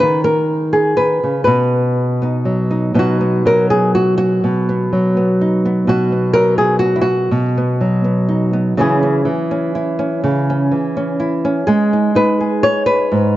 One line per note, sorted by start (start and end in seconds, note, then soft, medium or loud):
0.00 0.97 D#3 medium
0.00 0.24 B4 medium
0.24 0.96 A#4 medium
0.73 1.47 G#4 medium
0.97 1.23 D#3 medium
0.97 1.43 B4 medium
1.23 1.47 C#3 medium
1.44 2.93 B2 medium
1.44 2.94 B4 medium
2.22 2.93 B3 soft
2.22 2.69 D#4 soft
2.45 2.92 F#3 medium
2.71 2.93 D#4 soft
2.94 4.43 B2 medium
2.94 3.45 F#3 soft
2.94 3.20 B3 soft
2.94 5.41 D#4 soft
2.99 3.46 F#4 medium
3.21 4.69 B3 soft
3.46 4.92 F#3 medium
3.46 3.70 A#4 medium
3.70 3.94 G#4 medium
3.95 4.16 F#4 medium
4.18 5.63 F#4 medium
4.44 5.87 B2 medium
4.69 5.16 B3 soft
4.93 6.35 F#3 medium
5.17 5.65 B3 soft
5.41 6.95 D#4 soft
5.65 6.12 B3 medium
5.87 7.30 B2 medium
5.87 6.33 F#4 medium
6.12 7.28 B3 soft
6.33 7.28 F#3 medium
6.33 6.57 A#4 loud
6.58 6.79 G#4 medium
6.79 7.00 F#4 medium
6.96 7.05 E4 medium
7.01 8.49 F#4 medium
7.31 8.77 B2 medium
7.57 8.03 B3 soft
7.81 8.75 F#3 medium
8.04 8.52 B3 soft
8.28 8.74 D#4 soft
8.53 8.74 B3 soft
8.77 9.26 C#3 medium
8.77 9.25 E3 medium
8.77 9.02 C#4 medium
8.77 9.74 E4 medium
8.77 11.67 G#4 medium
9.03 9.51 C#4 soft
9.25 10.70 E3 medium
9.51 9.98 C#4 medium
9.75 10.20 E4 medium
9.99 10.20 C#4 medium
10.24 10.72 C#3 medium
10.50 10.95 C#4 medium
10.71 11.68 E3 medium
10.97 11.43 C#4 medium
11.20 11.65 E4 medium
11.45 11.65 C#4 medium
11.67 13.08 G#3 medium
11.67 12.38 G#4 medium
11.93 12.15 D#4 soft
12.15 13.37 D#4 medium
12.15 12.63 B4 loud
12.41 13.09 G#4 soft
12.63 12.86 C#5 loud
12.86 13.37 B4 medium
13.12 13.37 G#2 medium